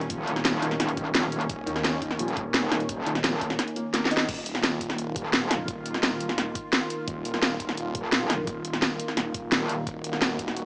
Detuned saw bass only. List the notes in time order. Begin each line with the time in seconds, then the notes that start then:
1.49 D#1
1.67 D#2
4.29 D#1
4.81 D#1
5.68 D#1
6.20 D#1
7.08 D#1
7.60 D#1
8.47 D#1
9.17 D#1
9.87 D#1
10.39 D#1